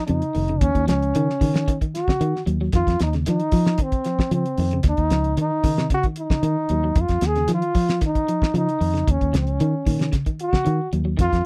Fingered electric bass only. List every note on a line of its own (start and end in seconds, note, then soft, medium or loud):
0.09 0.21 F2 medium
0.36 0.59 F1 medium
0.62 0.74 D#2 loud
0.75 0.86 D#2 medium
0.88 1.12 C#2 loud
1.15 1.27 D#3 loud
1.41 1.65 D#3 medium
2.21 2.33 D#3 medium
2.47 2.71 D#2 medium
2.74 2.86 F2 loud
2.87 2.98 F2 medium
3.01 3.24 D#2 medium
3.28 3.39 F3 loud
3.52 3.76 F3 medium
4.31 4.44 F3 medium
4.58 4.82 F2 medium
4.84 4.97 D#2 medium
4.98 5.09 D#2 medium
5.11 5.35 C#2 medium
5.37 5.50 D#3 loud
5.64 5.88 D#3 medium
6.43 6.55 D#3 medium
6.70 6.94 D#2 medium
6.96 7.08 F2 medium
7.09 7.21 F2 medium
7.22 7.46 D#2 medium
7.48 7.61 F3 loud
7.75 7.99 F3 medium
8.54 8.67 F3 medium
8.81 9.05 F2 medium
9.08 9.20 D#2 loud
9.21 9.33 D#2 medium
9.34 9.58 C#2 loud
9.61 9.73 D#3 loud
9.86 10.11 D#3 medium
10.67 10.79 D#3 loud
10.93 11.17 D#2 medium
11.19 11.32 F2 loud
11.33 11.44 F2 medium